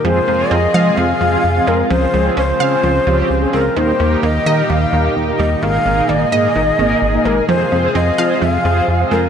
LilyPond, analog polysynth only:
\new Staff \with { instrumentName = "Analog polysynth" } { \time 4/4 \key f \minor \tempo 4 = 129 <aes c' f' aes'>16 r16 <aes c' f' bes'>8 r8 <aes c' f' aes'>8 r8 <aes c' f' aes'>8 r16 <aes c' f' aes'>8 r16 | <c' des' f' aes'>16 r16 <c' des' f' aes'>8 r8 <c' des' f' aes'>8 r8 <c' des' f' g'>8 r16 <c' des' f' aes'>8 r16 | <bes ees' g' bes'>16 r16 <bes ees' g' bes'>8 r8 <bes ees' g' bes'>8 r8 <bes ees' g' bes'>8 r16 <bes ees' g' bes'>8 r16 | <bes ees' aes' bes'>16 r16 <bes ees' aes' bes'>8 r8 <bes ees' aes' bes'>8 r8 <bes ees' aes' bes'>8 r16 <bes ees' aes' bes'>8 r16 |
<c' f' aes' c''>16 r16 <c' f' aes' c''>8 r8 <c' f' aes' c''>8 r8 <c' f' aes' c''>8 r16 <c' f' aes' c''>8 r16 | }